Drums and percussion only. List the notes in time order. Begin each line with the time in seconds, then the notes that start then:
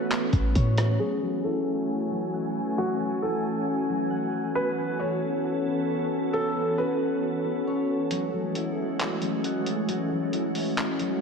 0.11 clap, closed hi-hat
0.33 kick, closed hi-hat
0.55 kick, closed hi-hat
0.78 cross-stick, closed hi-hat
8.11 closed hi-hat
8.55 closed hi-hat
9.00 clap, closed hi-hat
9.22 closed hi-hat
9.44 closed hi-hat
9.66 closed hi-hat
9.89 closed hi-hat
10.33 closed hi-hat
10.55 open hi-hat
10.77 clap, closed hi-hat
10.99 closed hi-hat